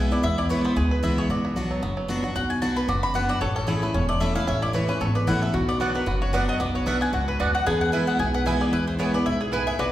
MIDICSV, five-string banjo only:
0, 0, Header, 1, 2, 480
1, 0, Start_track
1, 0, Tempo, 265369
1, 427, Time_signature, 4, 2, 24, 8
1, 17942, End_track
2, 0, Start_track
2, 0, Title_t, "Five-string banjo"
2, 0, Program_c, 0, 105
2, 0, Note_on_c, 0, 56, 63
2, 0, Note_on_c, 0, 59, 69
2, 0, Note_on_c, 0, 68, 58
2, 225, Note_on_c, 0, 64, 63
2, 385, Note_off_c, 0, 56, 0
2, 433, Note_off_c, 0, 59, 0
2, 440, Note_on_c, 0, 59, 76
2, 643, Note_off_c, 0, 68, 0
2, 678, Note_off_c, 0, 64, 0
2, 700, Note_on_c, 0, 64, 65
2, 917, Note_on_c, 0, 71, 55
2, 1175, Note_off_c, 0, 59, 0
2, 1182, Note_on_c, 0, 59, 78
2, 1347, Note_off_c, 0, 64, 0
2, 1389, Note_on_c, 0, 68, 66
2, 1644, Note_off_c, 0, 71, 0
2, 1651, Note_on_c, 0, 71, 60
2, 1870, Note_on_c, 0, 64, 59
2, 2079, Note_off_c, 0, 68, 0
2, 2136, Note_on_c, 0, 68, 60
2, 2346, Note_off_c, 0, 68, 0
2, 2347, Note_off_c, 0, 64, 0
2, 2353, Note_on_c, 0, 66, 68
2, 2609, Note_off_c, 0, 59, 0
2, 2617, Note_on_c, 0, 59, 61
2, 2807, Note_off_c, 0, 66, 0
2, 2828, Note_on_c, 0, 66, 56
2, 3089, Note_on_c, 0, 54, 56
2, 3263, Note_off_c, 0, 59, 0
2, 3303, Note_on_c, 0, 59, 69
2, 3517, Note_off_c, 0, 66, 0
2, 3542, Note_off_c, 0, 54, 0
2, 3563, Note_on_c, 0, 54, 66
2, 3779, Note_on_c, 0, 66, 55
2, 3994, Note_off_c, 0, 59, 0
2, 4025, Note_off_c, 0, 66, 0
2, 4046, Note_on_c, 0, 66, 63
2, 4184, Note_off_c, 0, 71, 0
2, 4216, Note_off_c, 0, 54, 0
2, 4243, Note_off_c, 0, 66, 0
2, 4264, Note_on_c, 0, 66, 72
2, 4720, Note_off_c, 0, 66, 0
2, 4742, Note_on_c, 0, 66, 64
2, 5008, Note_on_c, 0, 71, 61
2, 5200, Note_off_c, 0, 66, 0
2, 5222, Note_on_c, 0, 66, 67
2, 5461, Note_off_c, 0, 66, 0
2, 5482, Note_on_c, 0, 66, 67
2, 5657, Note_off_c, 0, 71, 0
2, 5702, Note_on_c, 0, 71, 59
2, 5942, Note_off_c, 0, 66, 0
2, 5964, Note_on_c, 0, 66, 62
2, 6171, Note_off_c, 0, 66, 0
2, 6178, Note_on_c, 0, 69, 65
2, 6180, Note_off_c, 0, 71, 0
2, 6442, Note_on_c, 0, 61, 60
2, 6633, Note_off_c, 0, 69, 0
2, 6654, Note_on_c, 0, 69, 61
2, 6924, Note_on_c, 0, 57, 60
2, 7094, Note_off_c, 0, 61, 0
2, 7133, Note_on_c, 0, 61, 66
2, 7348, Note_off_c, 0, 69, 0
2, 7378, Note_off_c, 0, 57, 0
2, 7400, Note_on_c, 0, 57, 65
2, 7618, Note_on_c, 0, 69, 58
2, 7827, Note_off_c, 0, 61, 0
2, 7877, Note_on_c, 0, 64, 61
2, 8053, Note_off_c, 0, 57, 0
2, 8092, Note_on_c, 0, 61, 83
2, 8310, Note_off_c, 0, 69, 0
2, 8339, Note_off_c, 0, 64, 0
2, 8361, Note_on_c, 0, 64, 61
2, 8581, Note_on_c, 0, 71, 61
2, 8787, Note_off_c, 0, 61, 0
2, 8841, Note_on_c, 0, 61, 76
2, 9013, Note_off_c, 0, 64, 0
2, 9065, Note_on_c, 0, 69, 72
2, 9272, Note_off_c, 0, 71, 0
2, 9326, Note_on_c, 0, 71, 61
2, 9493, Note_off_c, 0, 61, 0
2, 9541, Note_on_c, 0, 64, 55
2, 9753, Note_off_c, 0, 69, 0
2, 9800, Note_on_c, 0, 69, 61
2, 9976, Note_off_c, 0, 71, 0
2, 10015, Note_off_c, 0, 64, 0
2, 10016, Note_off_c, 0, 69, 0
2, 10022, Note_on_c, 0, 66, 67
2, 10284, Note_on_c, 0, 59, 58
2, 10482, Note_off_c, 0, 66, 0
2, 10503, Note_on_c, 0, 66, 55
2, 10771, Note_on_c, 0, 71, 65
2, 10958, Note_off_c, 0, 66, 0
2, 10980, Note_on_c, 0, 66, 64
2, 11224, Note_off_c, 0, 66, 0
2, 11246, Note_on_c, 0, 66, 62
2, 11458, Note_off_c, 0, 71, 0
2, 11466, Note_on_c, 0, 71, 58
2, 11708, Note_off_c, 0, 66, 0
2, 11729, Note_on_c, 0, 66, 61
2, 11928, Note_off_c, 0, 59, 0
2, 11936, Note_on_c, 0, 59, 79
2, 12186, Note_off_c, 0, 66, 0
2, 12208, Note_on_c, 0, 66, 59
2, 12408, Note_off_c, 0, 71, 0
2, 12415, Note_on_c, 0, 71, 59
2, 12674, Note_off_c, 0, 59, 0
2, 12681, Note_on_c, 0, 59, 75
2, 12859, Note_off_c, 0, 66, 0
2, 12904, Note_on_c, 0, 66, 68
2, 13159, Note_off_c, 0, 71, 0
2, 13166, Note_on_c, 0, 71, 62
2, 13365, Note_off_c, 0, 66, 0
2, 13387, Note_on_c, 0, 66, 56
2, 13630, Note_off_c, 0, 66, 0
2, 13652, Note_on_c, 0, 66, 63
2, 13862, Note_off_c, 0, 59, 0
2, 13864, Note_off_c, 0, 66, 0
2, 13869, Note_on_c, 0, 59, 88
2, 14345, Note_off_c, 0, 71, 0
2, 14353, Note_on_c, 0, 71, 60
2, 14614, Note_off_c, 0, 59, 0
2, 14621, Note_on_c, 0, 59, 74
2, 14834, Note_on_c, 0, 68, 70
2, 15089, Note_off_c, 0, 71, 0
2, 15096, Note_on_c, 0, 71, 62
2, 15310, Note_on_c, 0, 64, 62
2, 15523, Note_off_c, 0, 68, 0
2, 15574, Note_on_c, 0, 68, 65
2, 15766, Note_off_c, 0, 64, 0
2, 15788, Note_on_c, 0, 64, 68
2, 16226, Note_off_c, 0, 68, 0
2, 16270, Note_on_c, 0, 68, 55
2, 16481, Note_off_c, 0, 64, 0
2, 16530, Note_off_c, 0, 71, 0
2, 16538, Note_on_c, 0, 71, 63
2, 16749, Note_on_c, 0, 64, 70
2, 16963, Note_off_c, 0, 68, 0
2, 17014, Note_on_c, 0, 68, 59
2, 17153, Note_off_c, 0, 59, 0
2, 17227, Note_off_c, 0, 71, 0
2, 17234, Note_on_c, 0, 71, 59
2, 17444, Note_off_c, 0, 64, 0
2, 17483, Note_off_c, 0, 68, 0
2, 17504, Note_on_c, 0, 68, 57
2, 17709, Note_off_c, 0, 68, 0
2, 17717, Note_on_c, 0, 66, 72
2, 17942, Note_off_c, 0, 66, 0
2, 17942, Note_off_c, 0, 71, 0
2, 17942, End_track
0, 0, End_of_file